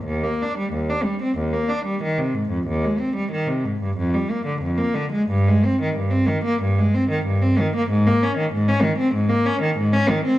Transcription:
\new Staff \with { instrumentName = "Cello" } { \clef bass \time 4/4 \key ees \major \tempo 4 = 93 ees,16 bes16 d'16 g16 ees,16 d'16 g16 c'16 ees,16 bes16 d'16 g16 ees16 c16 aes,16 f,16 | ees,16 aes16 c'16 g16 ees16 c16 aes,16 g,16 f,16 g16 bes16 d16 f,16 bes16 d16 aes16 | g,16 aes16 c'16 ees16 g,16 c'16 ees16 bes16 g,16 aes16 c'16 ees16 g,16 c'16 ees16 bes16 | \key aes \major aes,16 bes16 des'16 ees16 aes,16 des'16 ees16 c'16 aes,16 bes16 des'16 ees16 aes,16 des'16 ees16 c'16 | }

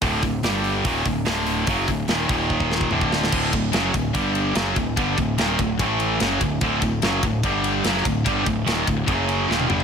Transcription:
<<
  \new Staff \with { instrumentName = "Distorted electric guitar" } { \clef bass \time 4/4 \tempo 4 = 146 <d, a, d>8 <d, a,>8 <g, d g>4 <ees, bes, ees>8 <d, a,>8 <d, a, d>4 | <fis, cis fis>8 <d, a,>8 <ees, bes, ees>8 <ees, bes, ees>4. <d, a, d>4 | <d, a, d>8 <d, a,>8 <fis, cis fis>8 <d, a,>8 <g, d g>4 <fis, cis fis>8 <d, a,>8 | <g, d g>8 <d, a,>8 <ees, bes, ees>8 <d, a,>8 <a, e a>4 <fis, cis fis>8 <d, a,>8 |
<d, a, d>8 <d, a,>8 <fis, cis fis>8 <d, a,>8 <g, d g>4 <fis, cis fis>8 <d, a,>8 | <g, d g>8 <d, a,>8 <ees, bes, ees>8 <d, a,>8 <fis, cis fis>4 <ees, bes, ees>8 <g, d g>8 | }
  \new Staff \with { instrumentName = "Distorted electric guitar" } { \clef bass \time 4/4 <d, a, d>8 <d, a,>8 <g, d g>4 <ees, bes, ees>8 <d, a,>8 <d, a, d>4 | <fis, cis fis>8 <d, a,>8 <ees, bes, ees>8 <ees, bes, ees>4. <d, a, d>4 | <d, a, d>8 <d, a,>8 <fis, cis fis>8 <d, a,>8 <g, d g>4 <fis, cis fis>8 <d, a,>8 | <g, d g>8 <d, a,>8 <ees, bes, ees>8 <d, a,>8 <a, e a>4 <fis, cis fis>8 <d, a,>8 |
<d, a, d>8 <d, a,>8 <fis, cis fis>8 <d, a,>8 <g, d g>4 <fis, cis fis>8 <d, a,>8 | <g, d g>8 <d, a,>8 <ees, bes, ees>8 <d, a,>8 <fis, cis fis>4 <ees, bes, ees>8 <g, d g>8 | }
  \new Staff \with { instrumentName = "Picked electric bass" } { \clef bass \time 4/4 d,,8 d,,8 g,,4 ees,,8 d,,8 d,,4 | fis,,8 d,,8 ees,,8 ees,,4. d,,4 | d,,8 d,,8 fis,,8 d,,8 g,,4 fis,,8 d,,8 | g,,8 d,,8 ees,,8 d,,8 a,,4 fis,,8 d,,8 |
d,,8 d,,8 fis,,8 d,,8 g,,4 fis,,8 d,,8 | g,,8 d,,8 ees,,8 d,,8 fis,,4 ees,,8 g,,8 | }
  \new DrumStaff \with { instrumentName = "Drums" } \drummode { \time 4/4 <hho bd>8 <hho bd>8 <hho sn>8 hho8 <hho bd>8 <hho bd>8 <hho sn>8 hho8 | <hho bd>8 <hho bd>8 <hho sn>8 <hho bd>8 bd16 bd16 sn16 bd16 toml16 bd16 sn16 sn16 | <cymc bd>8 <bd cymr>8 <cymr sn>8 <bd cymr>8 <bd cymr>8 cymr8 <cymr sn>8 <bd cymr>8 | <bd cymr>8 <bd cymr>8 <cymr sn>8 <bd cymr>8 <bd cymr>8 cymr8 <cymr sn>8 <bd cymr>8 |
<bd cymr>8 <bd cymr>8 <cymr sn>8 <bd cymr>8 <bd cymr>8 cymr8 <cymr sn>16 sn16 <bd cymr>8 | <bd cymr>8 <bd cymr>8 <cymr sn>8 <bd cymr>8 <bd cymr>8 cymr8 sn16 tommh16 toml16 tomfh16 | }
>>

